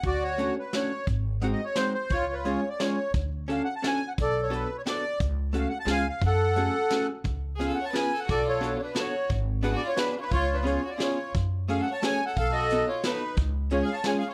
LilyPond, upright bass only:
\new Staff \with { instrumentName = "Upright bass" } { \clef bass \time 3/4 \key fis \minor \tempo 4 = 175 d,2 r4 | gis,,2 r4 | cis,2 r4 | d,2 r4 |
b,,2 r4 | cis,2 cis,4 | fis,2 r4 | cis,2 r4 |
b,,2 r4 | gis,,2 r4 | cis,2 r4 | fis,2 r4 |
b,,2 r4 | cis,2 r4 | }